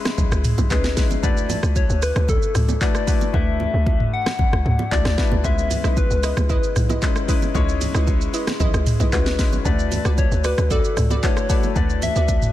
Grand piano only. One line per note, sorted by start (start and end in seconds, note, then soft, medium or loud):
0.00 0.70 G#3 medium
0.00 0.70 C#4 medium
0.00 0.71 D#4 medium
0.00 0.71 E4 medium
0.00 0.98 B4 loud
0.70 0.92 G#3 medium
0.70 0.92 C#4 medium
0.70 0.92 D#4 medium
0.70 0.92 E4 medium
0.70 0.92 G#4 medium
0.96 1.18 G#3 medium
0.96 1.18 C#4 medium
0.96 1.18 D#4 medium
0.96 1.18 E4 medium
0.96 1.19 B4 medium
1.23 2.07 A3 medium
1.23 2.08 D4 medium
1.23 2.08 E4 medium
1.23 2.08 F#4 medium
1.23 2.08 B4 medium
2.81 3.02 A3 medium
2.81 3.02 D4 medium
2.81 3.03 E4 medium
2.81 3.03 F#4 medium
2.81 3.03 B4 medium
3.07 3.28 A3 medium
3.07 3.29 D4 medium
3.07 3.29 E4 medium
3.07 3.29 F#4 medium
3.07 3.29 B4 medium
3.33 4.18 A3 medium
3.33 4.18 D4 medium
3.33 4.18 E4 medium
3.33 4.18 F#4 medium
3.33 4.19 B4 medium
4.91 5.13 A3 medium
4.91 5.13 D4 medium
4.91 5.13 E4 medium
4.91 5.13 F#4 medium
4.91 5.13 D5 medium
5.17 5.39 A3 medium
5.17 5.39 D4 medium
5.17 5.39 E4 medium
5.17 5.39 F#4 medium
5.17 5.40 B4 medium
5.44 6.28 G#3 medium
5.44 6.29 B3 medium
5.44 6.29 C#4 medium
5.44 6.29 E4 medium
5.44 6.29 B4 medium
7.02 7.23 G#3 medium
7.02 7.23 C#4 medium
7.02 7.24 D#4 medium
7.02 7.24 E4 medium
7.02 7.24 B4 medium
7.28 7.50 G#3 medium
7.28 7.50 C#4 medium
7.28 7.50 D#4 medium
7.28 7.50 E4 medium
7.28 7.50 B4 medium
7.54 8.39 G#3 medium
7.54 8.39 C#4 medium
7.54 8.39 D#4 medium
7.54 8.39 E4 medium
7.54 8.40 C#5 loud
9.12 9.34 G#3 medium
9.12 9.34 C#4 medium
9.12 9.34 D#4 medium
9.12 9.34 E4 medium
9.12 9.34 F#4 medium
9.38 9.60 G#3 medium
9.38 9.60 C#4 medium
9.38 9.60 D#4 medium
9.38 9.61 E4 medium
9.38 9.61 B4 medium
9.65 10.50 A3 medium
9.65 10.50 D4 medium
9.65 10.50 E4 medium
9.65 10.50 F#4 medium
9.65 10.50 B4 medium
11.23 11.44 A3 medium
11.23 11.44 D4 medium
11.23 11.45 E4 medium
11.23 11.45 F#4 medium
11.23 11.45 B4 medium
11.49 11.71 A3 medium
11.49 11.71 D4 medium
11.49 11.71 E4 medium
11.49 11.71 F#4 medium
11.49 11.71 A4 medium
11.75 12.52 A3 medium
11.75 12.52 D4 medium
11.75 12.52 E4 medium
11.75 12.52 F#4 medium
11.75 12.52 B4 medium